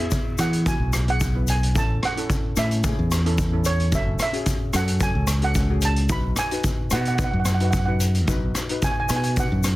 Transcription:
Already playing: E5
0.00 B3 E4 G#4
0.11 kick, closed hi-hat, shaker
0.38 E3 B3 E4 G#4 F#5, cross-stick, closed hi-hat, shaker
0.53 closed hi-hat, shaker
0.66 B3 E4 F#4 G#5, kick, closed hi-hat, shaker
0.80 B1
0.93 cross-stick, closed hi-hat, shaker
1.08 B3 E4 G#4 F#5, closed hi-hat
1.20 kick, closed hi-hat, shaker
1.35 B3 E4 B4
1.47 G#5, closed hi-hat, shaker
1.63 closed hi-hat
1.75 A1 C#4 E4 A4 A5, kick, closed hi-hat, shaker
2.03 F#5, cross-stick, closed hi-hat
2.17 C#4 E4 A4, closed hi-hat
2.30 kick, closed hi-hat, shaker
2.56 A2 C#4 E4 A4 E5, cross-stick, closed hi-hat, shaker
2.71 closed hi-hat, shaker
2.83 C#4 E4 G#4, kick, closed hi-hat, shaker
2.99 E2
3.11 cross-stick, closed hi-hat, shaker
3.25 C#4 E4 A4, closed hi-hat
3.38 kick, closed hi-hat, shaker
3.52 C#4 E4 A4
3.65 C#5, closed hi-hat, shaker
3.80 closed hi-hat
3.92 F#1 C#4 F#4 A4 E5, kick, closed hi-hat, shaker
4.19 E5, cross-stick, closed hi-hat, shaker
4.33 C#4 F#4 G#4, closed hi-hat
4.46 kick, closed hi-hat, shaker
4.73 F#2 C#4 F#4 A4 F#5, cross-stick, closed hi-hat, shaker
4.88 closed hi-hat, shaker
5.00 C#4 F#4 A4 G#5, kick, closed hi-hat, shaker
5.15 C#2
5.27 cross-stick, closed hi-hat, shaker
5.42 C#4 F#4 A4 F#5, closed hi-hat
5.55 kick, closed hi-hat, shaker
5.70 C#4 F#4 G#4
5.82 A5, closed hi-hat, shaker
5.96 closed hi-hat
6.09 B1 D#4 F#4 B4 B5, kick, closed hi-hat, shaker
6.36 G#5, cross-stick, closed hi-hat, shaker
6.51 D#4 F#4 B4, closed hi-hat, shaker
6.63 kick, closed hi-hat, shaker
6.91 B2 D#4 F#4 B4 F#5, cross-stick, closed hi-hat, shaker
7.01 F#5
7.05 F#5, closed hi-hat, shaker
7.15 D#4 F#5, kick, closed hi-hat, shaker
7.19 F#4 B4
7.24 F#5
7.31 F#2 F#5
7.40 F#5
7.45 F#5, cross-stick, closed hi-hat, shaker
7.54 F#5
7.60 D#4 F#4 B4, closed hi-hat, shaker
7.64 F#5
7.71 F#5, kick, closed hi-hat, shaker
7.79 F#5
7.86 D#4 F#4 B4 F#5
8.00 closed hi-hat, shaker
8.15 closed hi-hat, shaker
8.27 B1 D#4 F#4 B4, kick, closed hi-hat, shaker
8.55 cross-stick, closed hi-hat, shaker
8.69 D#4 F#4 B4, closed hi-hat
8.82 G#5, kick, closed hi-hat, shaker
8.91 G#5
9.00 G#5
9.09 B2 D#4 F#4 B4 G#5, cross-stick, closed hi-hat, shaker
9.16 G#5
9.23 G#5, closed hi-hat, shaker
9.36 D#4 F#4 B4 F#5, kick, closed hi-hat, shaker
9.52 F#2
9.64 cross-stick, closed hi-hat, shaker

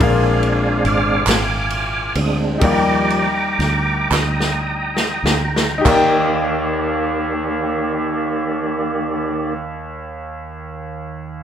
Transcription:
Already playing: D4
0.00 A#1 A#2 G#3 C4 D4 F4 G#4 A#4 D5 F5 G#5, kick, ride
0.43 ride
0.84 G#1 G#5 D6 F6, ride
1.27 G#1, snare, clap, ride
1.70 ride
2.15 D2 G#3 C4 D4 D#6, ride
2.58 D#2 G3 D#4 G4 A#4, kick, ride
2.62 F3 G3 D5 F5 G5 A#5 D6
2.72 G5
3.10 ride
3.59 D2, snare, ride
4.11 D2 G5 A#5 D#6, snare, clap
4.40 snare
4.97 snare
5.24 D2, snare
5.56 snare
5.78 D#4 G4
5.85 D#2 D#3 A#3 G4 A#4 D5, kick, clap, crash
5.91 G5

